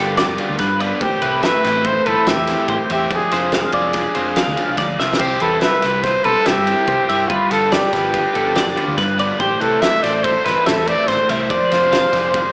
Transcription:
Already playing: G1 G2 D3 F3 G3 B3 F4 G4 A4
0.00 D4
0.17 F4 D5, snare, ride
0.28 F1
0.38 D3 F3 B3 F4, ride
0.49 D2
0.58 G2 B4, kick, snare, ride
0.79 D3 F3 B3 F4 B4 D5, ride
1.01 A1 A2 A3 C4 G4 C5, kick, ride
1.22 C2 E3 A3 C4 E4 B4, ride
1.42 A3 G4 B4 E5, snare, ride
1.64 A1 E3 A3 C4 E4 C5, snare, ride
1.84 A4 C5, kick, ride
2.06 G1 E3 A3 C4 E4 A4 B4, ride
2.26 A1 C4 G4 E5, snare, ride
2.37 E2
2.47 E3 A3 C4 E4, snare, ride
2.68 A1 A2 C5, kick, ride
2.90 E2 E3 A3 C4 E4 G4 E5, ride
3.10 F1 F3 G#4 D5, kick, ride
3.31 F1 F3 G#3 C4 D4 F4 C5, snare, ride
3.52 C4 D4 G#4 F5, snare, ride
3.72 F1 F3 G#3 C4 F4 D5, kick, ride
3.93 kick, snare, ride
3.98 D4
4.15 F1 C3 F3 G#3 C4 D4 F4 C5, ride
4.36 D4 F5, snare, ride
4.48 D2
4.56 F3 G#3 C4 D4 F4, ride
4.69 C2
4.77 D2 F3 D5, kick, snare, ride
4.99 C2 F3 G#3 C4 F4 C5 E5, snare
5.13 snare
5.18 C2 C3 G4 C5, kick, crash, ride
5.40 E2 C3 G3 C4 E4 G4 A4 B4, ride
5.61 G3 G4 B4 E5, snare, ride
5.82 C2 C3 G3 C4 E4, snare, ride
6.03 B4 C5, kick, snare, ride
6.24 B1 G2 C3 G3 C4 E4 A4 B4, ride
6.46 C2 E4 G4 E5, snare, ride
6.57 G2
6.67 C3 G3 C4 E4, ride
6.87 C2 C3 C5, kick, ride
7.09 G2 C3 G3 C4 E4 E5, ride
7.28 G1 G2 G3 D4 F4 B4, kick, ride
7.51 G1 D3 F3 B3 F4 A4, snare, ride
7.72 G3 F4 G4 D5, snare, ride
7.93 G1 D3 F3 B3 F4 B4, kick, snare, ride
8.14 F4, kick, ride
8.34 G1 D3 F3 B3 D4 F4 A4, ride
8.55 F4 D5, snare, ride
8.66 F1
8.76 D3 F3 B3 F4, ride
8.88 D2
8.98 G2 B4, kick, snare, ride
9.17 D3 F3 B3 F4 B4 D5, ride
9.40 A1 A2 G4 C5, kick, ride
9.60 C2 E3 A3 C4 E4 A4 B4, ride
9.72 G4
9.81 A3 G4 E5, snare, ride
10.03 A1 E3 A3 C4 E4 C5 D5, snare, ride
10.24 A4 C5, kick, ride
10.45 G1 E3 A3 C4 E4 B4, snare, ride
10.66 A1 G4 A4 E5, snare, ride
10.77 E2
10.86 E3 A3 C4 E4 A4 D5, ride
11.08 A1 A2 C5, kick, snare, ride
11.29 C2 E3 A3 C4 E4 G4 C5 E5, ride
11.41 A4
11.50 F1 F3 D5, kick, ride
11.71 F1 F3 G#3 C4 F4 C5, snare, ride
11.75 G#4
11.92 C4 G#4 F5, snare, ride
12.12 F1 F3 G#3 C4 F4 D5, kick, snare, ride
12.34 G#4, kick, ride

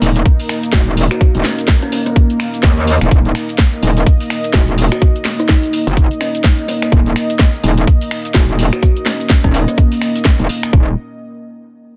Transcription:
Already playing: A#3 D#4 A#4
0.02 D#1, open hi-hat
0.16 closed hi-hat, cabasa
0.26 kick, closed hi-hat, cabasa
0.40 open hi-hat, cabasa
0.49 finger snap, open hi-hat
0.63 closed hi-hat, cabasa
0.73 D#1 F#4, kick, snare, closed hi-hat, cabasa
0.87 closed hi-hat, cabasa
0.97 open hi-hat
1.11 F#4, finger snap, closed hi-hat, cabasa
1.21 F#4, kick, closed hi-hat, cabasa
1.35 D#1, closed hi-hat, cabasa
1.44 C#4, finger snap, snare, open hi-hat
1.59 closed hi-hat, cabasa
1.68 kick, snare, closed hi-hat, cabasa
1.82 C#4, closed hi-hat, cabasa
1.92 C#4, open hi-hat
2.06 A#3, closed hi-hat, cabasa
2.16 kick, closed hi-hat, cabasa
2.30 closed hi-hat, cabasa
2.40 finger snap, open hi-hat
2.54 closed hi-hat, cabasa
2.63 D#2, kick, snare, closed hi-hat, cabasa
2.78 closed hi-hat, cabasa
2.87 open hi-hat
3.01 D#1, finger snap, closed hi-hat, cabasa
3.11 D#1 D#5, kick, closed hi-hat, cabasa
3.25 closed hi-hat, cabasa
3.35 finger snap, open hi-hat
3.49 closed hi-hat, cabasa
3.58 kick, snare, closed hi-hat, cabasa
3.73 cabasa
3.83 D#1, open hi-hat
3.97 closed hi-hat, cabasa
4.06 kick, closed hi-hat, cabasa
4.20 open hi-hat, cabasa
4.30 finger snap, open hi-hat
4.44 closed hi-hat, cabasa
4.54 D#1 F#4, kick, snare, closed hi-hat, cabasa
4.68 closed hi-hat, cabasa
4.78 open hi-hat
4.92 F#4, finger snap, closed hi-hat, cabasa
5.02 F#4, kick, closed hi-hat, cabasa
5.16 closed hi-hat, cabasa
5.25 finger snap, snare, open hi-hat
5.39 D#4, closed hi-hat, cabasa
5.49 D#4, kick, snare, closed hi-hat, cabasa
5.63 closed hi-hat, cabasa
5.73 open hi-hat
5.87 F#1, closed hi-hat, cabasa
5.97 kick, closed hi-hat, cabasa
6.11 closed hi-hat, cabasa
6.21 C#4, finger snap, open hi-hat
6.35 closed hi-hat, cabasa
6.44 kick, snare, closed hi-hat, cabasa
6.59 closed hi-hat, cabasa
6.68 A#3, open hi-hat
6.82 A#3, finger snap, closed hi-hat, cabasa
6.92 D#1, kick, closed hi-hat, cabasa
7.06 closed hi-hat, cabasa
7.16 finger snap, open hi-hat
7.30 closed hi-hat, cabasa
7.39 kick, snare, closed hi-hat, cabasa
7.54 cabasa
7.64 D#1, open hi-hat
7.78 closed hi-hat, cabasa
7.87 kick, closed hi-hat, cabasa
8.01 open hi-hat, cabasa
8.11 finger snap, open hi-hat
8.25 closed hi-hat, cabasa
8.34 D#1 F#4, kick, snare, closed hi-hat, cabasa
8.49 closed hi-hat, cabasa
8.59 open hi-hat
8.73 F#4, finger snap, closed hi-hat, cabasa
8.83 F#4, kick, closed hi-hat, cabasa
8.97 closed hi-hat, cabasa
9.06 C#4, finger snap, snare, open hi-hat
9.20 closed hi-hat, cabasa
9.30 kick, snare, closed hi-hat, cabasa
9.44 D#1 C#4, kick, closed hi-hat, cabasa
9.54 C#4, open hi-hat
9.68 A#3, closed hi-hat, cabasa
9.78 kick, closed hi-hat, cabasa
9.92 open hi-hat, cabasa
10.02 finger snap, open hi-hat
10.16 closed hi-hat, cabasa
10.25 kick, snare, closed hi-hat, cabasa
10.39 D#1, closed hi-hat, cabasa
10.49 open hi-hat
10.63 finger snap, closed hi-hat, cabasa
10.73 D#1, kick

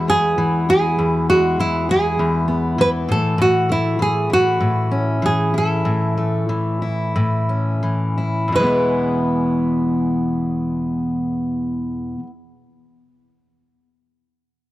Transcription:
Already playing: E2 E3 G#3 E4
0.08 B3 G#4
0.38 E3
0.69 E4 G#4
0.99 E2
1.29 G#3 F#4
1.59 E3 E4
1.89 E4 G#4
2.19 E2
2.48 B3
2.78 E3 B4
3.09 A2 A4
3.38 A2 F#4
3.69 A3 E4
3.99 E3 G#4
4.30 E4 F#4
4.60 A2
4.91 C#4
5.22 E3 G#4
5.54 E4 A4
5.85 A2
6.18 A3
6.49 E3
6.82 E4
7.16 A2
7.49 C#4
7.83 E3
8.18 E4
8.48 E2
8.52 B2 E3 B4
8.60 G#3 B3
8.66 E4

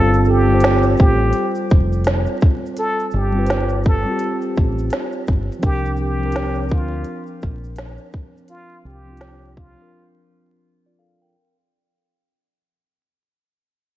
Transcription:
Already playing: G1 G3 C4 F4 A4 C5
0.14 shaker
0.25 shaker
0.29 G4
0.47 G3 C4
0.52 F4 C5
0.60 snare, closed hi-hat, shaker
0.83 shaker
0.97 A1 G4, kick, shaker
1.33 closed hi-hat, shaker
1.55 shaker
1.70 F1, kick, shaker
1.93 shaker
2.04 snare, closed hi-hat, shaker
2.26 shaker
2.41 kick, shaker
2.66 shaker
2.77 A4, closed hi-hat, shaker
3.00 shaker
3.11 G1, shaker
3.16 G4
3.32 G3 C4
3.37 F4 B4
3.45 C5, closed hi-hat, shaker
3.50 snare
3.69 shaker
3.83 A4, kick, shaker
4.04 G3 C4
4.08 F4 G4
4.19 closed hi-hat, shaker
4.42 shaker
4.56 A1, kick, shaker
4.78 shaker
4.90 snare, closed hi-hat, shaker
5.12 shaker
5.27 G1, kick, shaker
5.52 shaker
5.59 F3 C4, closed hi-hat, shaker
5.63 C2 D4 G4 A#4, kick
5.86 shaker
5.97 G4, shaker
6.19 F3 C4
6.23 D4 A#4
6.32 snare, closed hi-hat, shaker
6.55 shaker
6.69 D2 F4, kick, shaker
7.04 closed hi-hat, shaker
7.27 shaker
7.42 A#1, kick, shaker
7.64 shaker
7.76 snare, closed hi-hat, shaker
7.98 shaker
8.12 kick, shaker
8.37 shaker
8.48 F4, closed hi-hat
8.85 C2 G4
9.05 F3 C4
9.10 D4 F4
9.17 snare, closed hi-hat
9.57 F4, kick
9.75 F3 C4
9.80 D4 A#4
10.86 F4 D5
10.99 A4 F5
11.22 A#4 G5

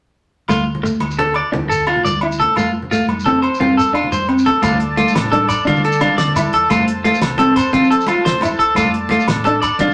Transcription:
0.48 D2 A3 F4, high conga, low agogo, shekere
0.58 low conga
0.75 low conga
0.83 A3, muted clean electric guitar stroke, shekere
1.00 D2, high conga, low conga, low agogo
1.11 shekere
1.19 A4, low conga
1.34 D5, low agogo
1.45 low conga
1.53 D2, muted clean electric guitar stroke, high conga, low conga
1.70 A4, low conga, shekere
1.87 F4, low agogo
1.96 low conga
2.05 D2 D5, high conga, shekere
2.21 E4, low agogo
2.32 shekere
2.40 A4, low conga
2.49 low conga
2.56 F2 A3 F4, high conga, low agogo, shekere
2.66 low conga
2.82 low conga
2.91 A3 F4, shekere
3.08 F2, high conga, low conga, low agogo
3.20 shekere
3.26 C4 A4, low conga
3.42 C5, low agogo
3.52 low conga, shekere
3.60 F2 C4 F4, high conga, low conga
3.77 A4, low conga, shekere
3.93 D4 F4, low agogo
4.04 low conga
4.11 F2 C5, high conga, shekere
4.29 C4, low agogo
4.38 shekere
4.46 A4, low conga
4.56 low conga
4.62 D2 A3 F4 A4 D5 A5, kick, closed hi-hat, high conga, low conga, low agogo, shekere
4.72 low conga
4.80 closed hi-hat
4.97 A3 F4, closed hi-hat, high conga, shekere
5.08 shekere
5.15 A1, snare, closed hi-hat, low conga, low agogo
5.23 low conga
5.32 D4 A4, closed hi-hat, high conga, low conga
5.49 D5, kick, snare, closed hi-hat, low agogo, shekere
5.65 D3 D4 F4, kick, closed hi-hat, high conga
5.76 low conga, shekere
5.84 A4, closed hi-hat, low conga, shekere
5.92 shekere
6.01 D4 F4, closed hi-hat, high conga, low agogo
6.11 low conga
6.18 D3 D5, snare, closed hi-hat
6.27 low conga
6.36 E4, closed hi-hat, high conga, low agogo, shekere
6.53 E2 A4, closed hi-hat
6.70 F2 A3 F4 C5, kick, closed hi-hat, high conga, low conga, low agogo, shekere
6.79 low conga
6.88 closed hi-hat
7.04 A3 F4, closed hi-hat, high conga, shekere
7.14 shekere
7.22 C2, snare, closed hi-hat, low conga, low agogo
7.30 low conga
7.38 C4 A4, closed hi-hat, high conga, low conga
7.56 C5, kick, closed hi-hat, low agogo, shekere
7.73 F3 C4 F4, kick, closed hi-hat, high conga
7.80 low conga, shekere
7.90 A4, closed hi-hat, low conga, shekere
8.01 shekere
8.06 F4, closed hi-hat, high conga, low agogo
8.15 low conga
8.25 F3 C5, snare, closed hi-hat
8.32 low conga
8.41 E4, closed hi-hat, high conga, low agogo, shekere
8.59 C2 A4, closed hi-hat
8.75 F2 A3 F4 D5, kick, closed hi-hat, high conga, low conga, low agogo, shekere
8.84 low conga
8.94 closed hi-hat
9.09 A3 F4, closed hi-hat, high conga, shekere
9.20 shekere
9.27 A1, snare, closed hi-hat, low conga, low agogo
9.36 low conga
9.44 D4 A4, closed hi-hat, high conga, low conga
9.62 D5, kick, snare, closed hi-hat, low agogo, shekere
9.79 F3 D4 F4, kick, closed hi-hat, high conga
9.88 low conga, shekere

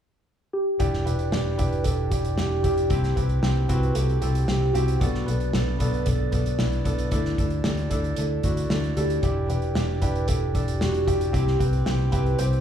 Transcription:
0.53 G4
0.79 E1 E3 D4 E4 G4, kick, closed hi-hat
0.93 snare
1.06 E1 D4 E4 G4 B4, closed hi-hat
1.19 closed hi-hat
1.32 E1 D4 E4 G4, snare
1.58 E1 D4 E4 G4 B4, kick, closed hi-hat
1.72 closed hi-hat
1.84 E1 D4 E4 G4 A4, kick, closed hi-hat
2.10 E1 D4 E4 G4, kick, closed hi-hat
2.24 closed hi-hat
2.37 E1 D4 E4 G4, snare
2.63 E1 D4 E4 G4, kick, closed hi-hat
2.77 closed hi-hat
2.89 C2 C3 C4 E4 G4, kick, closed hi-hat
3.04 snare, closed hi-hat
3.16 C2 C4 E4 G4 B4, kick, closed hi-hat
3.29 closed hi-hat
3.43 C2 C4 E4 G4, snare
3.69 C2 C4 E4 F#4 B4, kick, closed hi-hat
3.83 closed hi-hat
3.95 C2 C4 E4 G4 A4, closed hi-hat
4.09 closed hi-hat
4.21 C2 C4 E4 G4 A4, closed hi-hat
4.35 closed hi-hat
4.48 C2 C4 E4 G4, snare
4.73 C2 C4 E4 F#4 G4, closed hi-hat
4.88 closed hi-hat
5.00 B1 B2 B3 D4 F#4 A4, kick, closed hi-hat
5.15 snare
5.26 B1 B3 D4 A4 B4, closed hi-hat
5.40 closed hi-hat
5.53 B1 B3 D4 A4, snare
5.79 B1 B3 D4 A4 B4, kick, closed hi-hat
5.94 closed hi-hat
6.06 B1 B3 D4 A4, kick, closed hi-hat
6.32 B1 B3 D4 A4 B4, kick, closed hi-hat
6.46 closed hi-hat
6.59 B1 B3 D4 E4, snare
6.72 closed hi-hat
6.85 B1 B3 D4 A4, kick, closed hi-hat
6.98 closed hi-hat
7.11 D2 D3 D4 E4 A4, kick, closed hi-hat
7.25 snare
7.38 D2 D4 E4 A4, kick, closed hi-hat
7.50 closed hi-hat
7.64 D2 D4 E4 G4 A4, snare
7.77 closed hi-hat
7.90 D2 D4 E4 A4, kick, closed hi-hat
8.04 closed hi-hat
8.16 D2 D4 E4 A4, closed hi-hat
8.43 D2 D4 E4 F#4, kick, closed hi-hat
8.57 closed hi-hat
8.70 D2 D4 E4 A4, snare
8.84 closed hi-hat
8.97 D2 D4 E4 G4 A4, closed hi-hat
9.10 closed hi-hat
9.22 E1 E3 D4 E4 G4, kick, closed hi-hat
9.49 E1 D4 E4 G4 B4, closed hi-hat
9.62 closed hi-hat
9.75 E1 D4 E4 G4, snare
10.02 E1 D4 E4 G4 B4, kick, closed hi-hat
10.15 closed hi-hat
10.28 E1 D4 E4 G4 A4, kick, closed hi-hat
10.54 E1 D4 E4 G4 A4, kick, closed hi-hat
10.68 closed hi-hat
10.80 E1 D4 E4 F#4 G4, snare
10.94 closed hi-hat
11.07 E1 D4 E4 G4, kick, closed hi-hat
11.21 closed hi-hat
11.33 C2 C3 C4 E4 G4, kick, closed hi-hat
11.47 snare
11.59 C2 C4 E4 G4 B4, kick, closed hi-hat
11.73 closed hi-hat
11.86 C2 C4 E4 G4, snare
12.12 C2 C4 E4 G4 B4, kick, closed hi-hat
12.26 closed hi-hat
12.39 C2 C4 E4 G4 C5, closed hi-hat
12.53 closed hi-hat

